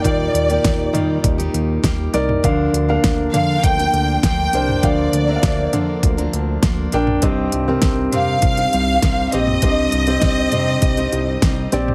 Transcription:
Already playing: D#4 A#4 G5
0.03 D#2 A#2 G3 A#3 D#4 G4 A#4 D5 G5, kick, closed hi-hat
0.34 D#2, closed hi-hat
0.48 D#3 G3 A#3 D#4 G4 A#4 G5, closed hi-hat
0.64 D#2, kick, snare, closed hi-hat
0.93 D#3 G3 A#3 D#4 G4, closed hi-hat, floor tom
1.24 D#2, kick, closed hi-hat
1.38 D#3 G3 A#3 D#4 G4, closed hi-hat
1.54 D#2, closed hi-hat
1.83 D#2 G3 A#3 D#4 G4, kick, snare, closed hi-hat
2.13 C2 D#4 A#4 D5, snare, closed hi-hat
2.29 floor tom
2.43 D2 D3 F3 A#3 D4 A#4 F5, kick, closed hi-hat
2.73 D2, closed hi-hat
2.89 D3 F3 A#3 D4 A#4 F5
3.04 D2, kick, snare, closed hi-hat
3.33 D3 F3 A#3 D4 A#4 F5, closed hi-hat, floor tom
3.64 D2 G5, kick, closed hi-hat
3.78 D3 F3 A#3 D4 A#4, closed hi-hat
3.93 D2, closed hi-hat
4.23 D2 F3 A#3 D4 A#4 G5, kick, snare, closed hi-hat
4.53 C2 D4 A#4 C5, snare, closed hi-hat
4.69 floor tom
4.82 D2 D3 F3 A#3 D4 A#4 D5 F5, kick, closed hi-hat
5.13 D2, closed hi-hat
5.27 D3 F3 A#3 D4 A#4 E5
5.36 F5
5.43 D2, kick, snare, closed hi-hat
5.72 D3 F3 A#3 D4 A#4, closed hi-hat, floor tom
6.03 D2, kick, closed hi-hat
6.17 D3 F3 A#3 D4 A#4, closed hi-hat
6.33 D2, closed hi-hat
6.62 D2 F3 A#3 D4 A#4, kick, snare, closed hi-hat
6.92 A#1 D4 A#4 G5, snare, closed hi-hat
7.07 floor tom
7.22 C2 G2 G3 C4 D#4 G4 D#5, kick, closed hi-hat
7.52 C2, closed hi-hat
7.68 C3 G3 C4 D#4 G4 A#4
7.82 C2, kick, snare, closed hi-hat
8.13 C3 G3 C4 D#4 G4 F5, closed hi-hat, floor tom
8.42 C2, kick, closed hi-hat
8.57 C3 G3 C4 D#4 G4, closed hi-hat
8.73 C2, closed hi-hat
9.02 C2 G3 C4 D#4 G4, kick, snare, closed hi-hat
9.32 A#1 C4 G4 D#5, snare, closed hi-hat
9.47 floor tom
9.62 C2 G2 G3 C4 D#4 G4 D#5, kick, closed hi-hat
9.92 C2, closed hi-hat
10.07 C3 G3 C4 D#4 G4 C5, closed hi-hat
10.22 C2, kick, snare, closed hi-hat
10.52 C3 G3 C4 D#4 G4, closed hi-hat, floor tom
10.82 C2, kick, closed hi-hat
10.97 C3 G3 C4 D#4 G4, closed hi-hat
11.13 C2, closed hi-hat
11.42 C2 G3 C4 D#4 G4, kick, snare, closed hi-hat
11.72 A#1 C4 G4 D5, snare, closed hi-hat
11.88 floor tom

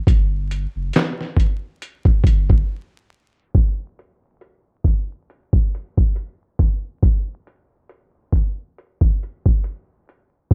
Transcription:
0.07 G1, kick, closed hi-hat
0.51 closed hi-hat
0.76 F#1
0.93 snare, clap, closed hi-hat
1.21 snare
1.37 kick, closed hi-hat
1.82 closed hi-hat
2.05 kick
2.24 G1, kick, closed hi-hat
2.50 kick
3.55 kick, closed hi-hat
3.99 closed hi-hat
4.41 closed hi-hat
4.84 kick, closed hi-hat
5.30 closed hi-hat
5.53 kick
5.75 closed hi-hat
5.97 kick
6.16 closed hi-hat
6.59 kick, closed hi-hat
7.03 kick, closed hi-hat
7.47 closed hi-hat
7.89 closed hi-hat
8.32 kick, closed hi-hat
8.78 closed hi-hat
9.01 kick
9.23 closed hi-hat
9.46 kick
9.64 closed hi-hat
10.09 closed hi-hat
10.51 kick

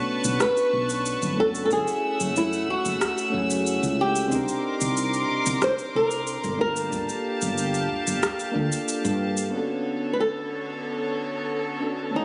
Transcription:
Already playing: A3 B3 C#4 D4 F#4 B4 A5 C#6
0.24 B1, shaker
0.40 B4, kick, cross-stick, shaker
0.57 shaker
0.73 B1
0.90 shaker
1.06 shaker
1.22 F#1, shaker
1.36 A3 B3 C#4 D4 F#4, kick
1.40 A4
1.55 shaker
1.65 A3 C#4 A4
1.70 F#1 A3 E4 F#4 G#4 E5 F#5 E6, kick, shaker
1.88 shaker
2.20 F#1, shaker
2.36 E4, shaker
2.53 shaker
2.69 F#4, kick
2.85 F#1, shaker
3.01 kick, cross-stick, shaker
3.18 shaker
3.30 F#1 A3 C#4 E4, kick
3.36 F#4 G#4
3.50 shaker
3.67 shaker
3.83 C#2, shaker
4.01 G4
4.16 shaker
4.28 C4 D4 D#4 A#4 C6 D6, kick
4.32 C2 G4 A#4, shaker
4.48 shaker
4.81 C2, shaker
4.97 shaker
5.14 shaker
5.46 C2, shaker
5.62 C5, kick, cross-stick, shaker
5.79 shaker
5.95 C2 A#4
6.11 shaker
6.27 shaker
6.44 G1, shaker
6.58 A#3 D4 F4 G4 A4 A#4 F5 A5, kick
6.76 shaker
6.88 A#3 D4 F4
6.92 G1 G4 A5, kick, shaker
7.09 shaker
7.42 G1, shaker
7.58 shaker
7.74 shaker
7.90 kick
8.07 G1, shaker
8.23 kick, cross-stick, shaker
8.39 shaker
8.52 A#3 D4 F4, kick
8.56 D2 G4 A4
8.72 shaker
8.88 shaker
9.05 G2, shaker
9.37 shaker
9.50 D3 B3 C#4 D4 A4 C#5 A5
9.55 F#4 A4
9.70 shaker
10.03 shaker
10.13 B4
10.20 A4
10.68 shaker
10.84 shaker
11.33 shaker
11.49 shaker
11.66 shaker
11.80 B3 C#4 D4 F#4 A4
11.98 shaker
12.10 E3 A3 C#4 F#4 A4, shaker
12.16 D#4 F#4 G#5

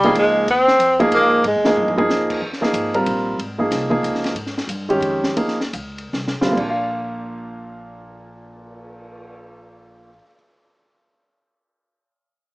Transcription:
Already playing: C2 G3
0.03 F3 A#3 D#4 G#4, kick, ride
0.14 C#2, ride
0.18 G#3
0.46 D#2 C4, ride
0.68 snare
0.79 F2, hi-hat pedal, ride
1.00 F3 A#3 D#4 G#4, ride
1.11 C#2 A#3, ride
1.44 G#2 G#3, ride
1.56 D#2
1.65 C#2 F3 A#3 D#4 G#4, snare
1.76 G2, floor tom
1.88 floor tom
1.97 F3 A#3 D#4 G#4, floor tom
2.09 F2, snare, hi-hat pedal
2.30 kick, crash
2.42 D#2
2.53 snare
2.61 F3 A#3 D#4 G#4, snare
2.73 G#1, hi-hat pedal, ride
2.94 G3 C4 F4 A#4, ride
3.06 A#1, ride
3.38 G#1, ride
3.58 F3 A#3 D#4 G#4
3.71 C2, snare, hi-hat pedal, ride
3.90 F3 A#3 D#4 G#4, kick
4.03 C#2, hi-hat pedal, ride
4.15 snare
4.24 snare, ride
4.35 G#2, ride
4.47 snare
4.58 snare
4.67 G2, hi-hat pedal, ride
4.89 D#3 G#3 C#4 G4, ride
5.00 F2, ride
5.24 snare
5.36 D#2 F3 A#3 D#4 G#4, ride
5.48 snare
5.61 snare
5.73 C#2, hi-hat pedal, ride
5.98 ride
6.13 C2, snare
6.28 snare
6.40 D3 G3 C4 F4, muted upright bass stroke, snare
6.45 A#2
6.51 A#3
6.57 A#1 D4, kick, crash
6.63 F4
6.70 F5
6.86 cymbal swell

